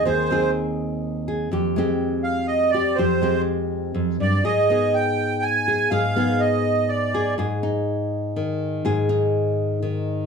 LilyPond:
<<
  \new Staff \with { instrumentName = "Accordion" } { \time 3/4 \key aes \lydian \tempo 4 = 123 c''4 r2 | r4. f''8 ees''8 d''8 | c''4 r4. d''8 | ees''4 g''4 aes''4 |
f''4 ees''4 d''4 | r2. | r2. | }
  \new Staff \with { instrumentName = "Nylon-string guitar" } { \time 3/4 \key aes \lydian << { aes'8 <c' ees' aes'>2 aes'8 | g'8 <aes c' g'>2 g'8 | g'8 <aes c' g'>2~ <aes c' g'>8 | aes'8 <ces' ees' aes'>2 aes'8 |
aes'8 <ces' ees' aes'>2 aes'8 | aes'8 ees'2~ ees'8 | aes'8 ees'2~ ees'8 | } \\ { ees,2. | f,2. | f,2 f,8 g,8 | aes,2. |
aes,2. | aes,2 ees4 | aes,2 ees4 | } >> }
>>